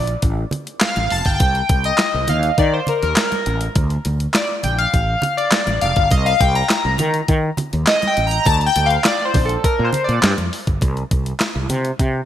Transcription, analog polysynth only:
0.82 1.12 F5 loud
1.12 1.27 A5 loud
1.26 1.87 G5 loud
1.85 2.30 D#5 loud
2.29 2.56 F5 medium
2.59 2.74 D5 medium
2.73 2.87 C5 medium
2.89 3.02 A#4 medium
3.03 3.58 A#4 medium
4.34 4.48 D5 medium
4.64 4.78 G5 medium
4.78 5.33 F5 medium
5.37 5.83 D5 medium
5.82 6.09 F5 loud
6.11 6.26 D#5 loud
6.26 6.40 F5 loud
6.41 6.54 G5 medium
6.56 7.10 A#5 loud
7.88 8.08 D#5 loud
8.07 8.28 G5 medium
8.27 8.47 A#5 loud
8.46 8.55 A5 loud
8.66 8.86 G5 loud
8.86 9.06 F5 medium
9.06 9.24 D5 loud
9.25 9.45 C5 medium
9.45 9.65 A4 medium
9.65 9.83 A#4 loud
9.84 10.04 C5 medium
10.04 10.31 D5 medium

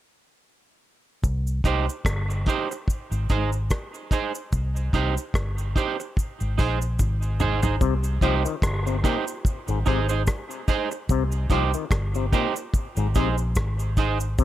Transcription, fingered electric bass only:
1.24 1.63 C2 loud
1.64 1.86 C2 medium
2.05 2.45 G1 medium
3.11 3.28 G#1 medium
3.30 3.69 G#1 medium
4.53 4.92 C2 medium
4.93 5.15 C2 medium
5.34 5.74 G1 medium
6.41 6.57 G#1 medium
6.59 6.98 A#1 medium
7.00 7.77 G#1 medium
7.81 8.20 C2 loud
8.22 8.44 C2 medium
8.63 9.02 G1 medium
9.68 9.85 G#1 medium
9.87 10.26 G#1 medium
11.09 11.48 C2 loud
11.50 11.72 C2 medium
11.91 12.30 G1 medium
12.97 13.14 G#1 loud
13.16 13.55 A#1 medium
13.57 14.35 G#1 medium
14.39 14.44 C2 loud

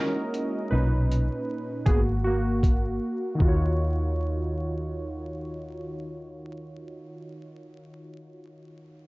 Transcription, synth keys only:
0.00 0.72 G#3 soft
0.00 0.72 A#3 soft
0.00 0.54 C#4 medium
0.00 0.72 D#4 soft
0.00 0.73 E4 medium
0.00 0.73 F#4 medium
0.00 0.53 A#4 medium
0.00 0.72 D#5 medium
0.71 1.82 A#2 soft
0.71 1.83 C#4 soft
0.71 1.45 D#4 medium
0.71 1.44 B4 medium
1.86 2.25 A#3 soft
1.86 2.02 B3 medium
1.86 2.23 F#4 medium
1.86 2.00 G#4 medium
2.24 3.37 A#3 medium
2.24 3.36 F#4 medium
3.35 6.91 D#3 medium
3.35 6.94 D#4 medium
3.41 6.97 F4 medium
3.41 7.01 F#4 medium
3.48 7.04 C#5 medium

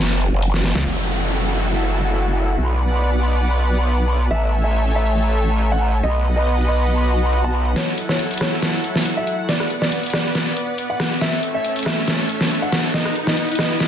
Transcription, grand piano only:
4.31 4.49 E5 loud
4.64 4.82 E5 medium
4.95 5.20 E5 medium
5.72 5.89 F#5 medium
6.03 6.22 D#5 loud
6.36 6.54 D#5 medium
6.68 6.92 D#5 medium
7.44 7.62 A5 medium
7.76 7.94 C#5 medium
8.09 8.27 C#5 medium
8.41 8.65 C#5 medium
9.17 9.35 E5 medium
9.49 9.67 D5 loud
9.82 9.99 D5 medium
10.14 10.38 D5 medium
10.90 11.07 F#5 medium
11.21 11.40 E5 loud
11.54 11.72 E5 medium
11.86 12.10 E5 medium
12.62 12.80 F#5 medium
12.94 13.12 D#5 loud
13.27 13.45 D#5 medium
13.59 13.83 D#5 medium

